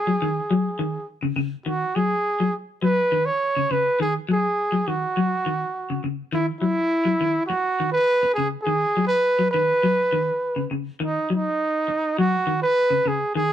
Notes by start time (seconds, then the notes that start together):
Already playing: G#4
0.07 F#3
0.22 D#3
0.51 F#3
0.79 D#3
1.23 C#3
1.36 C#3
1.66 D#3 F#4
1.96 F#3 G#4
2.40 F#3
2.82 F#3 B4
3.12 D#3
3.25 C#5
3.57 C#3
3.71 C#3 B4
4.00 D#3 G#4
4.29 F#3 G#4
4.72 F#3
4.88 D#3 F#4
5.17 F#3
5.46 D#3
5.90 C#3
6.04 C#3
6.33 D#3 E4
6.61 F#3 E4
7.05 F#3
7.21 D#3
7.46 F#4, muted clean electric guitar stroke
7.80 D#3
7.92 B4
8.23 muted clean electric guitar stroke
8.34 G#4
8.38 C#3
8.62 G#4
8.67 D#3
8.97 F#3
9.07 B4
9.39 F#3
9.51 D#3 B4
9.83 F#3
10.13 D#3
10.56 C#3
10.71 C#3
11.00 D#3 D#4
11.30 F#3
11.35 D#4
11.88 muted clean electric guitar stroke
12.18 F#3 F#4
12.47 D#3
12.62 B4
12.90 C#3
13.06 C#3 G#4
13.35 D#3 G#4